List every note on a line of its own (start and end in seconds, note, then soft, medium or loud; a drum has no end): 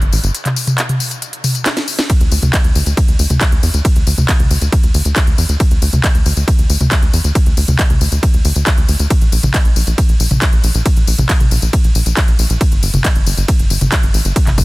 0.02 0.09 G1 medium
0.02 closed hi-hat medium
0.13 0.20 A1 loud
0.13 open hi-hat medium
0.13 tambourine medium
0.24 0.31 G1 loud
0.24 closed hi-hat medium
0.24 tambourine soft
0.35 closed hi-hat loud
0.35 tambourine soft
0.45 clap soft
0.45 closed hi-hat medium
0.45 mid tom medium
0.56 open hi-hat loud
0.56 tambourine medium
0.67 closed hi-hat medium
0.67 mid tom medium
0.67 tambourine soft
0.78 clap loud
0.78 closed hi-hat loud
0.78 tambourine soft
0.89 closed hi-hat medium
0.89 mid tom medium
1.00 open hi-hat medium
1.00 tambourine medium
1.11 closed hi-hat medium
1.11 tambourine soft
1.22 closed hi-hat loud
1.22 tambourine soft
1.33 closed hi-hat medium
1.44 open hi-hat loud
1.44 mid tom medium
1.44 tambourine medium
1.55 closed hi-hat medium
1.55 tambourine soft
1.66 snare medium
1.66 clap loud
1.66 closed hi-hat loud
1.66 tambourine soft
1.77 snare medium
1.77 closed hi-hat medium
1.88 open hi-hat medium
1.88 tambourine medium
1.99 snare medium
1.99 tambourine soft
2.10 kick loud
2.10 closed hi-hat loud
2.10 ride medium
2.10 tambourine soft
2.21 2.28 D2 medium
2.21 closed hi-hat medium
2.32 2.39 D2 loud
2.32 open hi-hat loud
2.32 tambourine medium
2.42 2.50 D2 loud
2.42 closed hi-hat medium
2.42 mid tom medium
2.42 tambourine soft
2.53 kick loud
2.53 clap loud
2.53 closed hi-hat loud
2.53 ride medium
2.53 tambourine soft
2.64 2.72 D2 medium
2.64 closed hi-hat medium
2.75 2.83 D2 loud
2.75 open hi-hat loud
2.75 tambourine medium
2.86 2.94 D2 medium
2.86 closed hi-hat medium
2.86 tambourine soft
2.97 kick loud
2.97 closed hi-hat medium
2.97 ride medium
2.97 tambourine soft
3.08 3.16 D2 medium
3.08 closed hi-hat medium
3.19 3.27 D2 loud
3.19 open hi-hat loud
3.19 tambourine medium
3.30 3.38 D2 medium
3.30 closed hi-hat medium
3.30 mid tom medium
3.30 tambourine soft
3.41 kick loud
3.41 clap loud
3.41 closed hi-hat loud
3.41 ride medium
3.52 3.60 D2 medium
3.52 closed hi-hat medium
3.63 3.71 E2 loud
3.63 open hi-hat medium
3.63 tambourine medium
3.74 3.82 D2 medium
3.74 closed hi-hat medium
3.74 tambourine soft
3.85 kick loud
3.85 closed hi-hat loud
3.85 ride medium
3.85 tambourine soft
3.96 4.03 D2 medium
3.96 closed hi-hat medium
4.07 4.14 D2 loud
4.07 open hi-hat loud
4.07 tambourine medium
4.18 4.25 D2 medium
4.18 closed hi-hat medium
4.18 mid tom medium
4.18 tambourine soft
4.29 kick loud
4.29 clap loud
4.29 closed hi-hat loud
4.29 ride medium
4.40 4.47 D2 medium
4.40 closed hi-hat medium
4.40 mid tom medium
4.51 4.58 D2 loud
4.51 open hi-hat loud
4.51 tambourine medium
4.62 4.69 D2 medium
4.62 closed hi-hat medium
4.62 tambourine soft
4.72 kick loud
4.72 closed hi-hat loud
4.72 ride medium
4.72 tambourine soft
4.83 4.91 D2 medium
4.83 closed hi-hat medium
4.94 5.02 D2 loud
4.94 open hi-hat loud
4.94 tambourine medium
5.05 5.13 D2 medium
5.05 closed hi-hat medium
5.05 tambourine soft
5.16 kick loud
5.16 clap loud
5.16 closed hi-hat medium
5.16 ride medium
5.16 tambourine soft
5.27 5.35 D2 medium
5.27 closed hi-hat medium
5.38 5.46 E2 loud
5.38 open hi-hat loud
5.38 tambourine medium
5.49 5.57 D2 medium
5.49 closed hi-hat medium
5.49 tambourine soft
5.60 kick loud
5.60 closed hi-hat medium
5.60 ride medium
5.60 tambourine soft
5.71 5.79 D2 medium
5.71 closed hi-hat medium
5.82 5.90 D2 loud
5.82 open hi-hat loud
5.82 tambourine medium
5.93 6.00 D2 medium
5.93 closed hi-hat medium
5.93 mid tom medium
5.93 tambourine soft
6.04 kick loud
6.04 clap loud
6.04 closed hi-hat medium
6.04 ride medium
6.04 tambourine soft
6.15 6.22 D2 medium
6.15 closed hi-hat medium
6.26 6.33 D2 loud
6.26 open hi-hat loud
6.26 tambourine medium
6.37 6.44 D2 medium
6.37 closed hi-hat medium
6.37 tambourine soft
6.48 kick loud
6.48 closed hi-hat medium
6.48 ride medium
6.48 tambourine soft
6.59 6.66 D2 medium
6.59 closed hi-hat medium
6.70 6.77 D2 loud
6.70 open hi-hat loud
6.70 tambourine medium
6.81 6.88 D2 medium
6.81 closed hi-hat medium
6.81 mid tom medium
6.81 tambourine soft
6.91 kick loud
6.91 clap loud
6.91 closed hi-hat medium
6.91 ride medium
6.91 tambourine soft
7.02 7.10 D2 medium
7.02 closed hi-hat medium
7.13 7.21 E2 loud
7.13 open hi-hat loud
7.13 tambourine medium
7.24 7.32 D2 medium
7.24 closed hi-hat medium
7.24 tambourine soft
7.35 kick loud
7.35 closed hi-hat medium
7.35 ride medium
7.35 tambourine soft
7.46 7.54 D2 medium
7.46 closed hi-hat medium
7.57 7.65 D2 loud
7.57 open hi-hat loud
7.57 tambourine medium
7.68 7.76 D2 loud
7.68 closed hi-hat medium
7.68 mid tom medium
7.68 tambourine soft
7.79 kick loud
7.79 clap loud
7.79 closed hi-hat medium
7.79 ride medium
7.79 tambourine soft
7.90 7.98 D2 medium
7.90 closed hi-hat medium
7.90 mid tom medium
8.01 8.09 D2 loud
8.01 open hi-hat loud
8.01 tambourine medium
8.12 8.20 D2 medium
8.12 closed hi-hat medium
8.12 tambourine soft
8.23 kick loud
8.23 closed hi-hat medium
8.23 ride medium
8.23 tambourine soft
8.34 8.41 D2 medium
8.34 closed hi-hat medium
8.45 8.52 D2 loud
8.45 open hi-hat loud
8.45 tambourine medium
8.56 8.63 D2 medium
8.56 closed hi-hat medium
8.56 tambourine soft
8.67 kick loud
8.67 clap loud
8.67 closed hi-hat medium
8.67 ride medium
8.67 tambourine soft
8.78 8.85 D2 medium
8.78 closed hi-hat medium
8.88 8.96 D2 loud
8.88 open hi-hat loud
8.88 tambourine medium
8.99 9.07 D2 medium
8.99 closed hi-hat medium
8.99 tambourine soft
9.10 kick loud
9.10 closed hi-hat medium
9.10 ride medium
9.10 tambourine soft
9.21 9.29 A#1 medium
9.21 closed hi-hat soft
9.32 9.40 A#1 loud
9.32 open hi-hat loud
9.32 tambourine medium
9.43 9.51 A#1 medium
9.43 closed hi-hat medium
9.43 mid tom medium
9.43 tambourine soft
9.54 kick loud
9.54 clap loud
9.54 closed hi-hat medium
9.54 ride medium
9.54 tambourine soft
9.65 9.73 A#1 medium
9.65 closed hi-hat medium
9.76 9.84 A#1 loud
9.76 open hi-hat medium
9.76 tambourine medium
9.87 9.95 A#1 medium
9.87 closed hi-hat medium
9.87 tambourine soft
9.98 kick loud
9.98 closed hi-hat medium
9.98 ride medium
9.98 tambourine soft
10.09 10.17 A#1 medium
10.09 closed hi-hat medium
10.20 10.28 A#1 loud
10.20 open hi-hat loud
10.20 tambourine medium
10.31 10.38 A#1 medium
10.31 closed hi-hat medium
10.31 mid tom medium
10.31 tambourine soft
10.42 kick loud
10.42 clap loud
10.42 closed hi-hat medium
10.42 ride medium
10.42 tambourine soft
10.53 10.60 A#1 medium
10.53 closed hi-hat medium
10.64 10.71 A#1 loud
10.64 open hi-hat medium
10.64 tambourine medium
10.75 10.82 A#1 loud
10.75 closed hi-hat medium
10.75 tambourine soft
10.86 kick loud
10.86 closed hi-hat loud
10.86 ride medium
10.86 tambourine soft
10.97 11.04 A#1 medium
10.97 closed hi-hat medium
11.07 11.15 A#1 loud
11.07 open hi-hat loud
11.07 tambourine medium
11.18 11.26 A#1 medium
11.18 closed hi-hat medium
11.18 mid tom medium
11.18 tambourine soft
11.29 kick loud
11.29 clap loud
11.29 closed hi-hat medium
11.29 ride medium
11.29 tambourine soft
11.40 11.48 A#1 medium
11.40 closed hi-hat medium
11.40 mid tom medium
11.51 11.59 A#1 loud
11.51 open hi-hat medium
11.51 tambourine medium
11.62 11.70 A#1 medium
11.62 closed hi-hat medium
11.62 tambourine soft
11.73 kick loud
11.73 closed hi-hat medium
11.73 ride medium
11.73 tambourine soft
11.84 11.92 A#1 medium
11.84 closed hi-hat medium
11.95 12.03 A#1 loud
11.95 open hi-hat loud
11.95 tambourine medium
12.06 12.14 A#1 medium
12.06 closed hi-hat medium
12.06 tambourine soft
12.17 kick loud
12.17 clap loud
12.17 closed hi-hat medium
12.17 ride medium
12.17 tambourine soft
12.28 12.36 A#1 medium
12.28 closed hi-hat medium
12.39 12.47 A#1 loud
12.39 open hi-hat medium
12.39 tambourine medium
12.50 12.57 A#1 medium
12.50 closed hi-hat medium
12.50 tambourine soft
12.61 kick loud
12.61 closed hi-hat loud
12.61 ride medium
12.61 tambourine soft
12.72 12.79 G1 medium
12.72 closed hi-hat medium
12.83 12.90 G1 loud
12.83 open hi-hat loud
12.83 tambourine medium
12.94 13.01 G1 medium
12.94 closed hi-hat medium
12.94 mid tom medium
12.94 tambourine soft
13.05 kick loud
13.05 clap loud
13.05 closed hi-hat loud
13.05 ride medium
13.15 13.23 G1 medium
13.15 closed hi-hat medium
13.26 13.34 G1 loud
13.26 open hi-hat medium
13.26 tambourine medium
13.37 13.45 G1 medium
13.37 closed hi-hat medium
13.37 tambourine soft
13.48 kick loud
13.48 closed hi-hat loud
13.48 ride medium
13.48 tambourine soft
13.59 13.67 G1 medium
13.59 closed hi-hat medium
13.70 13.78 G1 loud
13.70 open hi-hat loud
13.70 tambourine medium
13.81 13.89 G1 medium
13.81 closed hi-hat medium
13.81 mid tom medium
13.81 tambourine soft
13.92 kick loud
13.92 clap loud
13.92 closed hi-hat medium
13.92 ride medium
13.92 tambourine soft
14.03 14.11 G1 medium
14.03 closed hi-hat medium
14.14 14.22 A1 loud
14.14 open hi-hat medium
14.14 tambourine medium
14.25 14.33 G1 loud
14.25 closed hi-hat medium
14.25 tambourine soft
14.36 kick loud
14.36 closed hi-hat loud
14.36 ride medium
14.36 tambourine soft
14.47 14.55 G1 medium
14.47 clap soft
14.47 closed hi-hat medium
14.47 mid tom medium
14.58 14.64 G1 loud
14.58 kick medium
14.58 open hi-hat loud
14.58 tambourine medium